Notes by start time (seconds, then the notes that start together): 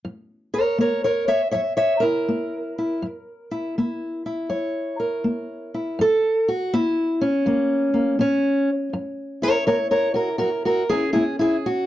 0.05 F#2
0.54 A#4 C#5
0.78 A#3 A#4 C#5
1.04 A#4 C#5
1.28 C#5 E5
1.51 F#2 C#5 E5
1.77 C#5 E5
2.00 E4 A#4
2.28 A#3
2.78 E4
3.02 F#2
3.51 E4
3.78 A#3 E4
4.26 E4
4.49 F#2 C#5
5.00 A#4
5.24 A#3
5.74 E4
5.99 F#2 A4
6.48 F#4
6.73 A#3 E4
7.21 C#4
7.46 F#2 A#3
7.94 A#3
8.19 A#3 C#4
8.93 F#2
9.42 E4 A#4 C#5
9.67 A#3 A#4 C#5
9.91 A#4 C#5
10.14 F#4 A#4
10.38 F#2 F#4 A#4
10.65 F#4 A#4
10.89 C#4 E4 G#4
11.13 A#3 E4 G#4
11.39 E4 G#4
11.66 F#4